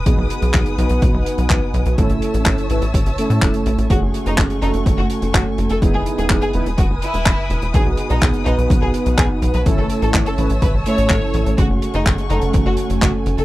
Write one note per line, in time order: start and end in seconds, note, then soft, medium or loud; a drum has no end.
0.00 1.94 B4 medium
0.00 1.94 D#6 medium
0.06 0.17 B1 loud
0.06 0.75 B3 medium
0.06 0.75 D#4 medium
0.06 0.75 F#4 medium
0.06 0.75 G#4 medium
0.06 1.96 F#5 medium
0.06 1.96 G#5 medium
0.06 kick loud
0.06 closed hi-hat medium
0.18 0.29 B1 medium
0.30 closed hi-hat medium
0.42 0.53 B1 medium
0.42 closed hi-hat medium
0.54 0.65 B1 loud
0.54 kick loud
0.54 clap loud
0.54 closed hi-hat medium
0.66 closed hi-hat medium
0.78 0.89 B1 medium
0.78 1.95 B3 medium
0.78 1.95 D#4 medium
0.78 1.95 F#4 medium
0.78 1.95 B4 loud
0.78 closed hi-hat medium
0.89 1.01 B1 medium
0.89 closed hi-hat medium
1.02 1.13 B1 loud
1.02 kick loud
1.02 closed hi-hat medium
1.14 1.25 B1 medium
1.26 closed hi-hat medium
1.38 1.49 B1 medium
1.38 closed hi-hat medium
1.50 1.61 B1 loud
1.50 kick loud
1.50 clap loud
1.50 closed hi-hat medium
1.74 1.85 B1 medium
1.74 closed hi-hat medium
1.86 1.97 B1 medium
1.86 closed hi-hat medium
1.98 2.09 A1 loud
1.98 2.67 A3 medium
1.98 2.67 C#4 medium
1.98 2.67 E4 medium
1.98 2.67 A4 loud
1.98 3.88 C#5 medium
1.98 3.88 E5 medium
1.98 3.88 A5 medium
1.98 3.88 E6 medium
1.98 kick loud
1.98 closed hi-hat medium
2.10 2.21 A1 medium
2.10 closed hi-hat medium
2.22 closed hi-hat medium
2.34 2.45 A1 medium
2.34 closed hi-hat medium
2.46 2.57 A1 medium
2.46 kick loud
2.46 clap loud
2.46 closed hi-hat medium
2.58 closed hi-hat medium
2.70 2.81 A1 medium
2.70 2.83 A3 loud
2.70 2.83 C#4 medium
2.70 2.83 E4 medium
2.70 2.83 B4 loud
2.70 closed hi-hat medium
2.82 2.93 A1 medium
2.82 closed hi-hat medium
2.94 3.05 A1 loud
2.94 kick loud
2.94 closed hi-hat medium
3.06 3.17 A1 medium
3.06 closed hi-hat medium
3.18 3.87 A3 medium
3.18 3.87 C#4 medium
3.18 3.87 E4 medium
3.18 3.87 A4 loud
3.18 closed hi-hat medium
3.30 3.41 A2 medium
3.30 closed hi-hat medium
3.42 3.53 E1 loud
3.42 kick loud
3.42 clap loud
3.42 closed hi-hat medium
3.54 closed hi-hat medium
3.66 3.77 A1 medium
3.66 closed hi-hat medium
3.78 3.89 A1 medium
3.78 closed hi-hat medium
3.90 4.01 F#1 loud
3.90 4.59 A3 medium
3.90 5.80 A3 medium
3.90 4.59 C#4 medium
3.90 4.59 F#4 medium
3.90 3.98 F#4 medium
3.90 4.59 G#4 medium
3.90 5.80 F#5 medium
3.90 9.62 G#5 medium
3.90 5.80 C#6 medium
3.90 kick loud
3.90 closed hi-hat medium
4.02 4.13 F#1 medium
4.14 closed hi-hat medium
4.26 4.37 F#1 medium
4.26 4.34 D#4 medium
4.26 closed hi-hat medium
4.38 4.49 F#1 loud
4.38 kick loud
4.38 clap loud
4.38 closed hi-hat medium
4.50 closed hi-hat medium
4.62 4.73 F#1 medium
4.62 5.79 A3 medium
4.62 5.79 C#4 medium
4.62 4.70 D#4 medium
4.62 5.79 F#4 medium
4.62 5.79 A4 loud
4.62 closed hi-hat medium
4.74 4.85 F#1 medium
4.74 closed hi-hat medium
4.86 4.97 F#1 loud
4.86 kick loud
4.86 closed hi-hat medium
4.98 5.09 F#1 medium
4.98 5.06 F#4 medium
5.10 closed hi-hat medium
5.22 5.33 F#1 medium
5.22 closed hi-hat medium
5.34 5.45 F#1 loud
5.34 5.42 F#4 medium
5.34 kick loud
5.34 clap loud
5.34 closed hi-hat medium
5.58 5.69 F#1 medium
5.58 closed hi-hat medium
5.70 5.81 F#1 medium
5.70 5.78 A4 medium
5.70 closed hi-hat medium
5.82 5.93 E1 loud
5.82 6.51 B3 medium
5.82 6.51 D#4 medium
5.82 6.51 E4 medium
5.82 6.51 G#4 loud
5.82 9.62 B4 medium
5.82 9.62 D#6 medium
5.82 kick loud
5.82 closed hi-hat medium
5.94 6.05 E1 medium
5.94 6.02 G#4 medium
6.06 closed hi-hat medium
6.18 6.29 E1 medium
6.18 6.26 G#4 medium
6.18 closed hi-hat medium
6.30 6.41 E1 loud
6.30 kick loud
6.30 clap loud
6.30 closed hi-hat medium
6.42 6.50 G#4 medium
6.42 closed hi-hat medium
6.54 6.65 E1 medium
6.54 6.67 B3 medium
6.54 6.67 D#4 medium
6.54 6.67 E4 medium
6.54 6.67 B4 loud
6.54 closed hi-hat medium
6.66 6.77 E1 medium
6.66 closed hi-hat medium
6.78 6.89 E1 loud
6.78 6.86 F#4 medium
6.78 kick loud
6.78 closed hi-hat medium
6.90 7.01 E1 medium
7.02 7.64 E4 medium
7.02 closed hi-hat medium
7.14 7.25 E1 medium
7.14 closed hi-hat medium
7.26 7.37 E1 loud
7.26 kick loud
7.26 clap loud
7.26 closed hi-hat medium
7.50 7.61 E1 medium
7.50 closed hi-hat medium
7.62 7.73 E1 medium
7.62 closed hi-hat medium
7.74 7.85 B1 loud
7.74 8.43 B3 medium
7.74 8.43 D#4 medium
7.74 8.43 F#4 medium
7.74 8.43 G#4 medium
7.74 7.82 G#4 loud
7.74 9.64 F#5 medium
7.74 kick loud
7.74 closed hi-hat medium
7.86 7.97 B1 medium
7.97 closed hi-hat medium
8.10 8.21 B1 medium
8.10 8.18 D#4 medium
8.10 closed hi-hat medium
8.21 8.33 B1 loud
8.21 kick loud
8.21 clap loud
8.21 closed hi-hat medium
8.34 closed hi-hat medium
8.46 8.57 B1 medium
8.46 9.63 B3 medium
8.46 8.54 D#4 medium
8.46 9.63 D#4 medium
8.46 9.63 F#4 medium
8.46 9.63 B4 medium
8.46 closed hi-hat medium
8.58 8.69 B1 medium
8.58 closed hi-hat medium
8.70 8.81 B1 loud
8.70 kick loud
8.70 closed hi-hat medium
8.82 8.93 B1 medium
8.82 8.90 G#4 medium
8.94 closed hi-hat medium
9.06 9.17 B1 medium
9.06 closed hi-hat medium
9.18 9.29 B1 loud
9.18 9.26 G#4 medium
9.18 kick loud
9.18 clap loud
9.18 closed hi-hat medium
9.42 9.53 B1 medium
9.42 closed hi-hat medium
9.54 9.65 B1 medium
9.54 9.62 B4 medium
9.54 closed hi-hat medium
9.66 9.77 A1 loud
9.66 10.35 A3 medium
9.66 10.35 C#4 medium
9.66 10.35 E4 medium
9.66 10.35 A4 loud
9.66 11.56 C#5 medium
9.66 11.56 E5 medium
9.66 11.56 A5 medium
9.66 11.56 E6 medium
9.66 kick loud
9.66 closed hi-hat medium
9.78 9.89 A1 medium
9.78 9.86 A4 medium
9.90 closed hi-hat medium
10.02 10.13 A1 medium
10.02 10.10 A4 medium
10.02 closed hi-hat medium
10.13 10.25 A1 loud
10.13 kick loud
10.13 clap loud
10.13 closed hi-hat medium
10.26 10.34 A4 medium
10.26 closed hi-hat medium
10.38 10.49 A1 medium
10.38 10.51 A3 loud
10.38 10.51 C#4 medium
10.38 10.51 E4 medium
10.38 10.51 B4 loud
10.38 closed hi-hat medium
10.50 10.61 A1 medium
10.50 closed hi-hat medium
10.62 10.73 A1 loud
10.62 10.70 B4 medium
10.62 kick loud
10.62 closed hi-hat medium
10.74 10.85 A1 medium
10.86 11.55 A3 medium
10.86 11.55 C#4 medium
10.86 11.55 E4 medium
10.86 11.55 A4 loud
10.86 11.48 C#5 loud
10.86 closed hi-hat medium
10.98 11.09 A1 medium
10.98 closed hi-hat medium
11.10 11.21 A1 medium
11.10 kick loud
11.10 clap loud
11.10 closed hi-hat medium
11.34 11.45 A1 medium
11.34 closed hi-hat medium
11.46 11.57 A1 medium
11.46 closed hi-hat medium
11.58 11.69 F#1 loud
11.58 12.27 A3 medium
11.58 13.45 A3 medium
11.58 12.27 C#4 medium
11.58 12.27 F#4 medium
11.58 11.66 F#4 medium
11.58 12.27 G#4 medium
11.58 13.45 F#5 medium
11.58 13.45 G#5 medium
11.58 13.45 C#6 medium
11.58 kick loud
11.58 closed hi-hat medium
11.70 11.81 F#1 medium
11.82 closed hi-hat medium
11.94 12.05 F#1 medium
11.94 12.02 D#4 medium
11.94 closed hi-hat medium
12.06 12.17 F#1 loud
12.06 kick loud
12.06 clap loud
12.06 closed hi-hat medium
12.18 closed hi-hat medium
12.30 12.41 F#1 medium
12.30 13.45 A3 medium
12.30 13.45 C#4 medium
12.30 12.38 D#4 medium
12.30 13.45 F#4 medium
12.30 13.45 A4 medium
12.30 closed hi-hat medium
12.42 12.53 F#1 medium
12.42 closed hi-hat medium
12.53 12.65 F#1 loud
12.53 kick loud
12.53 closed hi-hat medium
12.66 12.77 F#1 medium
12.66 12.74 F#4 medium
12.77 closed hi-hat medium
12.90 13.01 F#1 medium
12.90 closed hi-hat medium
13.02 13.13 F#1 loud
13.02 13.10 F#4 medium
13.02 kick loud
13.02 clap loud
13.02 closed hi-hat medium
13.26 13.37 F#1 medium
13.26 closed hi-hat medium
13.38 13.45 F#1 medium
13.38 13.45 A4 medium
13.38 closed hi-hat medium